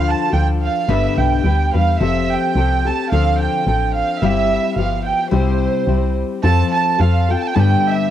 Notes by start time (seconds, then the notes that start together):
Already playing: D2 D3 F3 D4 F4 A4
0.08 A5
0.31 D2 F3 D4 F4 A4 G5
0.63 F5
0.88 G1 G2 D3 G3 B3 D4 B4 E5
1.17 B1 G5
1.44 D2 G3 B3 D4 B4
1.73 E2 G3 B3 D4 B4 F5
2.00 F1 F3 C4 G4 A4 E5
2.32 G5
2.55 C2 F3 C4 G4 A4
2.85 C4 G4 A4 A5
3.11 D2 D3 F3 C4 D4 A4 F5
3.41 G5
3.66 A1 F3 C4 D4 A4
3.97 F5
4.21 G1 G3 C4 E4 G4 E5
4.76 G1 F3 B3 F4 G4 F5
5.06 G5
5.31 C2 C3 G3 C4 E4 G4 C5
5.87 C2 G3 C4 E4 G4
6.43 F2 F3 C4 F4 A4 A5
6.74 A5
6.99 F2 F3 C4 F4 A4 F5
7.29 C4 F4 A4 G5
7.38 A5
7.47 G5
7.54 G2 D3 G3 B3 D4 G4 A5
7.61 G5
7.87 E5